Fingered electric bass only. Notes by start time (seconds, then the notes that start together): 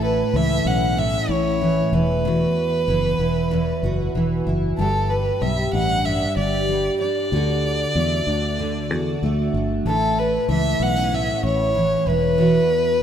Already playing: A1
0.33 C#2
0.65 B1
1.29 A1
1.92 E1
2.88 F#1
3.19 E1
3.83 F#1
4.15 E1
4.47 F#1
4.78 G1
5.42 B1
5.73 A1
6.37 G1
7.32 D2
7.95 E2
8.27 D2
8.90 E2
9.22 D2
9.54 G1
9.85 A1
10.48 C#2
10.80 B1
11.43 A1
12.07 E1